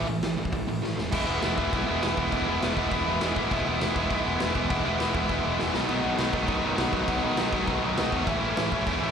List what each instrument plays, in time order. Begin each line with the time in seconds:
0.07 picked electric bass A1, distorted electric guitar A2 E3, open hi-hat
0.23 picked electric bass A1, distorted electric guitar A2 E3, snare, open hi-hat
0.38 picked electric bass A1, distorted electric guitar A2 E3, open hi-hat
0.45 kick
0.52 picked electric bass A1, distorted electric guitar A2 E3, kick, open hi-hat
0.67 picked electric bass A1, distorted electric guitar A2 E3, open hi-hat
0.83 picked electric bass A1, distorted electric guitar A2 E3, snare
0.98 picked electric bass E1, distorted electric guitar A2 E3, snare
1.12 picked electric bass E1, distorted electric guitar E3 G#3 B3 E4, kick, crash
1.28 picked electric bass E1, distorted electric guitar E3 G#3 B3 E4
1.42 picked electric bass E1, distorted electric guitar E3 G#3 B3 E4, snare, crash
1.58 picked electric bass E1, distorted electric guitar E3 G#3 B3 E4, kick
1.72 picked electric bass B1, distorted electric guitar E3 G#3 B3 E4, kick, crash
1.87 picked electric bass E1, distorted electric guitar E3 G#3 B3 E4
2.02 picked electric bass E1, distorted electric guitar E3 G#3 B3 E4, snare, crash
2.17 picked electric bass E1, distorted electric guitar E3 G#3 B3 E4, kick
2.32 picked electric bass E1, distorted electric guitar E3 G#3 B3 E4, kick, crash
2.47 picked electric bass E1, distorted electric guitar E3 G#3 B3 E4
2.62 picked electric bass E1, distorted electric guitar E3 G#3 B3 E4, snare, crash
2.76 picked electric bass E1, distorted electric guitar E3 G#3 B3 E4, kick
2.91 picked electric bass E1, distorted electric guitar E3 G#3 B3 E4, kick, crash
3.06 picked electric bass E1, distorted electric guitar E3 G#3 B3 E4
3.21 picked electric bass E1, distorted electric guitar E3 G#3 B3 E4, snare, crash
3.36 picked electric bass A1, distorted electric guitar E3 G#3 B3 E4, kick
3.51 picked electric bass E1, distorted electric guitar E3 G#3 B3 E4, kick, crash
3.65 picked electric bass E1, distorted electric guitar E3 G#3 B3 E4
3.80 picked electric bass E1, distorted electric guitar E3 G#3 B3 E4, snare, crash
3.96 picked electric bass E1, distorted electric guitar E3 G#3 B3 E4, kick
4.09 picked electric bass B1, distorted electric guitar E3 G#3 B3 E4, kick, crash
4.25 picked electric bass E1, distorted electric guitar E3 G#3 B3 E4
4.40 picked electric bass E1, distorted electric guitar E3 G#3 B3 E4, snare, crash
4.55 picked electric bass E1, distorted electric guitar E3 G#3 B3 E4, kick
4.69 picked electric bass E1, distorted electric guitar E3 G#3 B3 E4, kick, crash
4.85 picked electric bass E1, distorted electric guitar E3 G#3 B3 E4
4.99 picked electric bass E1, distorted electric guitar E3 G#3 B3 E4, snare, crash
5.15 picked electric bass E1, distorted electric guitar E3 G#3 B3 E4, kick
5.29 picked electric bass E1, distorted electric guitar E3 G#3 B3 E4, kick, crash
5.45 picked electric bass E1, distorted electric guitar E3 G#3 B3 E4
5.59 picked electric bass E1, distorted electric guitar E3 G#3 B3 E4, snare
5.74 picked electric bass B1, distorted electric guitar B2 D#3 F#3 B3 D#4, snare
5.89 picked electric bass B1, distorted electric guitar B2 D#3 F#3 B3 D#4, crash
6.04 picked electric bass B1, distorted electric guitar B2 D#3 F#3 B3 D#4
6.18 picked electric bass B1, distorted electric guitar B2 D#3 F#3 B3 D#4, snare, crash
6.33 picked electric bass B1, distorted electric guitar B2 D#3 F#3 B3 D#4, kick
6.48 picked electric bass F#2, distorted electric guitar B2 D#3 F#3 B3 D#4, kick, crash
6.64 picked electric bass B1, distorted electric guitar B2 D#3 F#3 B3 D#4
6.78 picked electric bass B1, distorted electric guitar B2 D#3 F#3 B3 D#4, snare, crash
6.93 picked electric bass B1, distorted electric guitar B2 D#3 F#3 B3 D#4, kick
7.08 picked electric bass B1, distorted electric guitar B2 D#3 F#3 B3 D#4, kick, crash
7.24 picked electric bass B1, distorted electric guitar B2 D#3 F#3 B3 D#4
7.37 picked electric bass B1, distorted electric guitar B2 D#3 F#3 B3 D#4, snare, crash
7.53 picked electric bass B1, distorted electric guitar B2 D#3 F#3 B3 D#4, kick
7.67 picked electric bass B1, distorted electric guitar B2 D#3 F#3 B3 D#4, kick, crash
7.83 picked electric bass B1, distorted electric guitar B2 D#3 F#3 B3 D#4
7.97 picked electric bass B1, distorted electric guitar B2 D#3 F#3 B3 D#4, snare, crash
8.12 picked electric bass E2, distorted electric guitar B2 D#3 F#3 B3 D#4, kick
8.26 picked electric bass A1, distorted electric guitar A2 E3 A3 C#4 E4, kick, crash
8.42 picked electric bass A1, distorted electric guitar A2 E3 A3 C#4 E4
8.57 picked electric bass A1, distorted electric guitar A2 E3 A3 C#4 E4, snare, crash
8.72 picked electric bass A1, distorted electric guitar A2 E3 A3 C#4 E4, kick
8.87 picked electric bass E2, distorted electric guitar A2 E3 A3 C#4 E4, kick, crash
9.02 picked electric bass A1, distorted electric guitar A2 E3 A3 C#4 E4